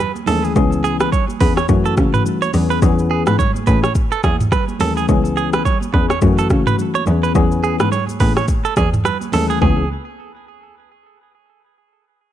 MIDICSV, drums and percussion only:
0, 0, Header, 1, 2, 480
1, 0, Start_track
1, 0, Key_signature, 4, "minor"
1, 0, Tempo, 566038
1, 474, Time_signature, 4, 2, 24, 8
1, 10453, End_track
2, 0, Start_track
2, 0, Title_t, "Drums"
2, 0, Note_on_c, 9, 82, 79
2, 84, Note_off_c, 9, 82, 0
2, 130, Note_on_c, 9, 63, 75
2, 135, Note_on_c, 9, 82, 53
2, 215, Note_off_c, 9, 63, 0
2, 220, Note_off_c, 9, 82, 0
2, 224, Note_on_c, 9, 64, 83
2, 231, Note_on_c, 9, 46, 74
2, 231, Note_on_c, 9, 82, 52
2, 309, Note_off_c, 9, 64, 0
2, 316, Note_off_c, 9, 46, 0
2, 316, Note_off_c, 9, 82, 0
2, 378, Note_on_c, 9, 82, 53
2, 462, Note_off_c, 9, 82, 0
2, 473, Note_on_c, 9, 82, 74
2, 474, Note_on_c, 9, 36, 119
2, 477, Note_on_c, 9, 64, 72
2, 558, Note_off_c, 9, 82, 0
2, 559, Note_off_c, 9, 36, 0
2, 561, Note_off_c, 9, 64, 0
2, 613, Note_on_c, 9, 82, 54
2, 698, Note_off_c, 9, 82, 0
2, 716, Note_on_c, 9, 82, 54
2, 801, Note_off_c, 9, 82, 0
2, 849, Note_on_c, 9, 82, 63
2, 850, Note_on_c, 9, 63, 55
2, 852, Note_on_c, 9, 37, 124
2, 934, Note_off_c, 9, 82, 0
2, 935, Note_off_c, 9, 63, 0
2, 937, Note_off_c, 9, 37, 0
2, 951, Note_on_c, 9, 64, 79
2, 955, Note_on_c, 9, 36, 97
2, 959, Note_on_c, 9, 82, 77
2, 1036, Note_off_c, 9, 64, 0
2, 1040, Note_off_c, 9, 36, 0
2, 1044, Note_off_c, 9, 82, 0
2, 1087, Note_on_c, 9, 63, 80
2, 1099, Note_on_c, 9, 82, 60
2, 1172, Note_off_c, 9, 63, 0
2, 1184, Note_off_c, 9, 82, 0
2, 1191, Note_on_c, 9, 46, 78
2, 1194, Note_on_c, 9, 36, 94
2, 1197, Note_on_c, 9, 63, 70
2, 1276, Note_off_c, 9, 46, 0
2, 1279, Note_off_c, 9, 36, 0
2, 1282, Note_off_c, 9, 63, 0
2, 1334, Note_on_c, 9, 37, 103
2, 1339, Note_on_c, 9, 82, 59
2, 1419, Note_off_c, 9, 37, 0
2, 1424, Note_off_c, 9, 82, 0
2, 1430, Note_on_c, 9, 82, 80
2, 1433, Note_on_c, 9, 36, 95
2, 1514, Note_off_c, 9, 82, 0
2, 1517, Note_off_c, 9, 36, 0
2, 1573, Note_on_c, 9, 82, 57
2, 1658, Note_off_c, 9, 82, 0
2, 1671, Note_on_c, 9, 82, 64
2, 1674, Note_on_c, 9, 36, 97
2, 1676, Note_on_c, 9, 37, 96
2, 1686, Note_on_c, 9, 63, 70
2, 1756, Note_off_c, 9, 82, 0
2, 1759, Note_off_c, 9, 36, 0
2, 1761, Note_off_c, 9, 37, 0
2, 1770, Note_off_c, 9, 63, 0
2, 1816, Note_on_c, 9, 45, 86
2, 1817, Note_on_c, 9, 82, 55
2, 1901, Note_off_c, 9, 45, 0
2, 1902, Note_off_c, 9, 82, 0
2, 1912, Note_on_c, 9, 64, 78
2, 1916, Note_on_c, 9, 82, 81
2, 1997, Note_off_c, 9, 64, 0
2, 2001, Note_off_c, 9, 82, 0
2, 2050, Note_on_c, 9, 63, 73
2, 2054, Note_on_c, 9, 82, 51
2, 2135, Note_off_c, 9, 63, 0
2, 2138, Note_off_c, 9, 82, 0
2, 2145, Note_on_c, 9, 64, 81
2, 2151, Note_on_c, 9, 46, 72
2, 2151, Note_on_c, 9, 82, 53
2, 2229, Note_off_c, 9, 64, 0
2, 2235, Note_off_c, 9, 46, 0
2, 2235, Note_off_c, 9, 82, 0
2, 2298, Note_on_c, 9, 82, 50
2, 2382, Note_off_c, 9, 82, 0
2, 2393, Note_on_c, 9, 82, 80
2, 2394, Note_on_c, 9, 36, 122
2, 2397, Note_on_c, 9, 64, 70
2, 2478, Note_off_c, 9, 82, 0
2, 2479, Note_off_c, 9, 36, 0
2, 2482, Note_off_c, 9, 64, 0
2, 2533, Note_on_c, 9, 82, 56
2, 2618, Note_off_c, 9, 82, 0
2, 2769, Note_on_c, 9, 82, 64
2, 2771, Note_on_c, 9, 63, 57
2, 2772, Note_on_c, 9, 37, 123
2, 2854, Note_off_c, 9, 82, 0
2, 2855, Note_off_c, 9, 63, 0
2, 2857, Note_off_c, 9, 37, 0
2, 2871, Note_on_c, 9, 64, 76
2, 2875, Note_on_c, 9, 36, 100
2, 2879, Note_on_c, 9, 82, 79
2, 2956, Note_off_c, 9, 64, 0
2, 2959, Note_off_c, 9, 36, 0
2, 2964, Note_off_c, 9, 82, 0
2, 3007, Note_on_c, 9, 63, 78
2, 3019, Note_on_c, 9, 82, 62
2, 3092, Note_off_c, 9, 63, 0
2, 3104, Note_off_c, 9, 82, 0
2, 3110, Note_on_c, 9, 82, 56
2, 3114, Note_on_c, 9, 36, 98
2, 3117, Note_on_c, 9, 63, 70
2, 3195, Note_off_c, 9, 82, 0
2, 3198, Note_off_c, 9, 36, 0
2, 3202, Note_off_c, 9, 63, 0
2, 3253, Note_on_c, 9, 37, 104
2, 3258, Note_on_c, 9, 82, 57
2, 3337, Note_off_c, 9, 37, 0
2, 3343, Note_off_c, 9, 82, 0
2, 3350, Note_on_c, 9, 82, 82
2, 3352, Note_on_c, 9, 36, 97
2, 3434, Note_off_c, 9, 82, 0
2, 3437, Note_off_c, 9, 36, 0
2, 3493, Note_on_c, 9, 82, 56
2, 3578, Note_off_c, 9, 82, 0
2, 3590, Note_on_c, 9, 82, 61
2, 3594, Note_on_c, 9, 36, 96
2, 3595, Note_on_c, 9, 37, 100
2, 3605, Note_on_c, 9, 63, 69
2, 3674, Note_off_c, 9, 82, 0
2, 3679, Note_off_c, 9, 36, 0
2, 3679, Note_off_c, 9, 37, 0
2, 3689, Note_off_c, 9, 63, 0
2, 3735, Note_on_c, 9, 45, 87
2, 3736, Note_on_c, 9, 82, 55
2, 3820, Note_off_c, 9, 45, 0
2, 3821, Note_off_c, 9, 82, 0
2, 3831, Note_on_c, 9, 64, 77
2, 3832, Note_on_c, 9, 36, 109
2, 3832, Note_on_c, 9, 37, 98
2, 3836, Note_on_c, 9, 82, 76
2, 3916, Note_off_c, 9, 37, 0
2, 3916, Note_off_c, 9, 64, 0
2, 3917, Note_off_c, 9, 36, 0
2, 3921, Note_off_c, 9, 82, 0
2, 3969, Note_on_c, 9, 63, 71
2, 3972, Note_on_c, 9, 82, 49
2, 4054, Note_off_c, 9, 63, 0
2, 4057, Note_off_c, 9, 82, 0
2, 4064, Note_on_c, 9, 64, 82
2, 4071, Note_on_c, 9, 46, 77
2, 4071, Note_on_c, 9, 82, 54
2, 4149, Note_off_c, 9, 64, 0
2, 4155, Note_off_c, 9, 46, 0
2, 4155, Note_off_c, 9, 82, 0
2, 4217, Note_on_c, 9, 82, 49
2, 4302, Note_off_c, 9, 82, 0
2, 4313, Note_on_c, 9, 82, 79
2, 4314, Note_on_c, 9, 36, 117
2, 4316, Note_on_c, 9, 64, 68
2, 4398, Note_off_c, 9, 36, 0
2, 4398, Note_off_c, 9, 82, 0
2, 4401, Note_off_c, 9, 64, 0
2, 4453, Note_on_c, 9, 82, 52
2, 4538, Note_off_c, 9, 82, 0
2, 4556, Note_on_c, 9, 82, 53
2, 4641, Note_off_c, 9, 82, 0
2, 4690, Note_on_c, 9, 63, 56
2, 4690, Note_on_c, 9, 82, 61
2, 4693, Note_on_c, 9, 37, 112
2, 4775, Note_off_c, 9, 63, 0
2, 4775, Note_off_c, 9, 82, 0
2, 4778, Note_off_c, 9, 37, 0
2, 4792, Note_on_c, 9, 64, 73
2, 4795, Note_on_c, 9, 36, 99
2, 4799, Note_on_c, 9, 82, 74
2, 4877, Note_off_c, 9, 64, 0
2, 4880, Note_off_c, 9, 36, 0
2, 4884, Note_off_c, 9, 82, 0
2, 4927, Note_on_c, 9, 63, 81
2, 4940, Note_on_c, 9, 82, 60
2, 5012, Note_off_c, 9, 63, 0
2, 5024, Note_off_c, 9, 82, 0
2, 5035, Note_on_c, 9, 36, 94
2, 5037, Note_on_c, 9, 63, 71
2, 5119, Note_off_c, 9, 36, 0
2, 5122, Note_off_c, 9, 63, 0
2, 5173, Note_on_c, 9, 37, 103
2, 5178, Note_on_c, 9, 82, 56
2, 5258, Note_off_c, 9, 37, 0
2, 5263, Note_off_c, 9, 82, 0
2, 5270, Note_on_c, 9, 82, 82
2, 5273, Note_on_c, 9, 36, 95
2, 5355, Note_off_c, 9, 82, 0
2, 5358, Note_off_c, 9, 36, 0
2, 5414, Note_on_c, 9, 82, 59
2, 5498, Note_off_c, 9, 82, 0
2, 5510, Note_on_c, 9, 82, 59
2, 5515, Note_on_c, 9, 36, 93
2, 5515, Note_on_c, 9, 37, 93
2, 5525, Note_on_c, 9, 63, 70
2, 5595, Note_off_c, 9, 82, 0
2, 5600, Note_off_c, 9, 36, 0
2, 5600, Note_off_c, 9, 37, 0
2, 5610, Note_off_c, 9, 63, 0
2, 5656, Note_on_c, 9, 45, 88
2, 5657, Note_on_c, 9, 82, 53
2, 5741, Note_off_c, 9, 45, 0
2, 5742, Note_off_c, 9, 82, 0
2, 5752, Note_on_c, 9, 64, 75
2, 5757, Note_on_c, 9, 82, 78
2, 5836, Note_off_c, 9, 64, 0
2, 5842, Note_off_c, 9, 82, 0
2, 5890, Note_on_c, 9, 63, 74
2, 5893, Note_on_c, 9, 82, 49
2, 5975, Note_off_c, 9, 63, 0
2, 5978, Note_off_c, 9, 82, 0
2, 5985, Note_on_c, 9, 64, 84
2, 5992, Note_on_c, 9, 82, 53
2, 6070, Note_off_c, 9, 64, 0
2, 6077, Note_off_c, 9, 82, 0
2, 6137, Note_on_c, 9, 82, 49
2, 6222, Note_off_c, 9, 82, 0
2, 6234, Note_on_c, 9, 82, 76
2, 6235, Note_on_c, 9, 36, 122
2, 6238, Note_on_c, 9, 64, 72
2, 6319, Note_off_c, 9, 82, 0
2, 6320, Note_off_c, 9, 36, 0
2, 6322, Note_off_c, 9, 64, 0
2, 6374, Note_on_c, 9, 82, 53
2, 6459, Note_off_c, 9, 82, 0
2, 6478, Note_on_c, 9, 82, 51
2, 6563, Note_off_c, 9, 82, 0
2, 6612, Note_on_c, 9, 63, 58
2, 6612, Note_on_c, 9, 82, 60
2, 6615, Note_on_c, 9, 37, 115
2, 6696, Note_off_c, 9, 63, 0
2, 6697, Note_off_c, 9, 82, 0
2, 6700, Note_off_c, 9, 37, 0
2, 6713, Note_on_c, 9, 64, 77
2, 6721, Note_on_c, 9, 82, 79
2, 6798, Note_off_c, 9, 64, 0
2, 6806, Note_off_c, 9, 82, 0
2, 6848, Note_on_c, 9, 63, 78
2, 6861, Note_on_c, 9, 82, 62
2, 6933, Note_off_c, 9, 63, 0
2, 6946, Note_off_c, 9, 82, 0
2, 6953, Note_on_c, 9, 46, 73
2, 6955, Note_on_c, 9, 36, 94
2, 6957, Note_on_c, 9, 63, 71
2, 7038, Note_off_c, 9, 46, 0
2, 7040, Note_off_c, 9, 36, 0
2, 7042, Note_off_c, 9, 63, 0
2, 7095, Note_on_c, 9, 37, 107
2, 7101, Note_on_c, 9, 82, 59
2, 7180, Note_off_c, 9, 37, 0
2, 7185, Note_off_c, 9, 82, 0
2, 7191, Note_on_c, 9, 82, 84
2, 7193, Note_on_c, 9, 36, 96
2, 7276, Note_off_c, 9, 82, 0
2, 7278, Note_off_c, 9, 36, 0
2, 7335, Note_on_c, 9, 82, 59
2, 7420, Note_off_c, 9, 82, 0
2, 7431, Note_on_c, 9, 82, 59
2, 7435, Note_on_c, 9, 36, 98
2, 7436, Note_on_c, 9, 37, 94
2, 7446, Note_on_c, 9, 63, 72
2, 7516, Note_off_c, 9, 82, 0
2, 7520, Note_off_c, 9, 36, 0
2, 7521, Note_off_c, 9, 37, 0
2, 7531, Note_off_c, 9, 63, 0
2, 7577, Note_on_c, 9, 45, 85
2, 7578, Note_on_c, 9, 82, 56
2, 7662, Note_off_c, 9, 45, 0
2, 7663, Note_off_c, 9, 82, 0
2, 7672, Note_on_c, 9, 64, 71
2, 7674, Note_on_c, 9, 37, 94
2, 7679, Note_on_c, 9, 82, 76
2, 7757, Note_off_c, 9, 64, 0
2, 7759, Note_off_c, 9, 37, 0
2, 7764, Note_off_c, 9, 82, 0
2, 7810, Note_on_c, 9, 63, 72
2, 7815, Note_on_c, 9, 82, 53
2, 7895, Note_off_c, 9, 63, 0
2, 7900, Note_off_c, 9, 82, 0
2, 7905, Note_on_c, 9, 64, 79
2, 7912, Note_on_c, 9, 46, 75
2, 7912, Note_on_c, 9, 82, 52
2, 7990, Note_off_c, 9, 64, 0
2, 7997, Note_off_c, 9, 46, 0
2, 7997, Note_off_c, 9, 82, 0
2, 8059, Note_on_c, 9, 82, 51
2, 8144, Note_off_c, 9, 82, 0
2, 8154, Note_on_c, 9, 63, 87
2, 8155, Note_on_c, 9, 36, 106
2, 8155, Note_on_c, 9, 43, 104
2, 8239, Note_off_c, 9, 63, 0
2, 8240, Note_off_c, 9, 36, 0
2, 8240, Note_off_c, 9, 43, 0
2, 10453, End_track
0, 0, End_of_file